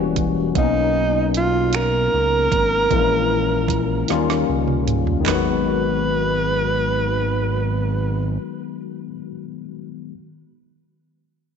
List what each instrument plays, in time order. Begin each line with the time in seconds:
Already playing: analog synth bass E1, tine electric piano E3 G3 A#3 C#4 F#4
0.16 kick, closed hi-hat
0.54 analog synth bass B1, tine electric piano F#3 A#3 B3, kick, closed hi-hat
0.58 tine electric piano C#4 D#4, tenor saxophone D#4
1.34 tenor saxophone F4, closed hi-hat
1.73 tenor saxophone A#4, finger snap, closed hi-hat
2.14 analog synth bass C#2
2.52 analog synth bass G#1, kick, closed hi-hat
2.91 analog synth bass A#1, tine electric piano E3 G#3 A#3 C4 E4, kick, closed hi-hat
3.00 tine electric piano C#4
3.68 kick, closed hi-hat
4.08 analog synth bass D#2, tine electric piano D#3 G3 A#3 C#4 F4, snare, closed hi-hat
4.30 snare
4.49 analog synth bass C#2
4.68 mid tom
4.87 closed hi-hat, mid tom
5.07 floor tom
5.20 tine electric piano D#3 G#3
5.26 analog synth bass G#1, tine electric piano F#3, tenor saxophone B4, snare, clap, floor tom
5.31 tine electric piano B3 F#4